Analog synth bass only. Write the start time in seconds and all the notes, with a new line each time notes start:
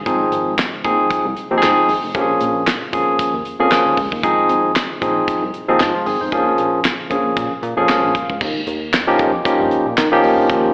0.06 G#1
0.32 G#1
0.84 A#1
1.25 C2
1.51 D#2
1.63 G#2
1.89 G#1
2.03 F1
2.15 A#1
2.41 A#1
2.93 G#1
3.34 D#2
3.60 F2
3.86 D#2
3.97 C#2
4.12 D#2
4.24 G#1
4.49 G#1
5.02 A#1
5.42 C2
5.69 D#2
5.80 G#2
6.06 G#1
6.21 F1
6.32 A#1
6.58 A#1
7.11 A#1
7.37 A#2
7.63 A#2
7.78 F2
7.89 C#2
8.03 A#1
8.30 C#2
8.41 D#2
8.67 D#2
9.19 F2
9.60 G2
9.86 A#2
9.98 D#3
10.24 D#2
10.38 A#1
10.49 D#2